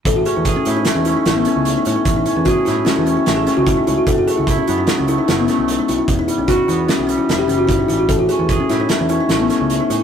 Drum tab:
HH |xxxxxxxxxx|xxxxxxxxxx|xxxxxxxxxx|xxxxxxxxxx|
SD |----o-o---|---oo-oo--|----o-oo--|--o-o-o---|
BD |o-o-------|o-o-----o-|o-o-------|o-o-----o-|

HH |xxxxxxxxxx|
SD |---oo-oo--|
BD |o-o-------|